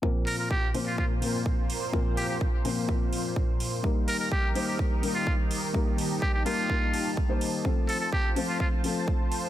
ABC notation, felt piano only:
X:1
M:4/4
L:1/16
Q:1/4=126
K:Eblyd
V:1 name="Felt piano"
[B,,F,B,CB]6 [B,,F,B,Cc]4 [B,,F,B,CB]6 | [B,,F,B,CB]6 [B,,F,B,CB]2 [B,,F,B,CB]8 | [G,B,EB]6 [G,B,Ec]4 [G,B,EB]6 | [G,B,EB]6 [G,B,EB]2 [G,B,EB]4- [G,B,EB] [G,B,Ec]3 |
[F,A,CA]6 [F,A,Cc]4 [F,A,CA]6 |]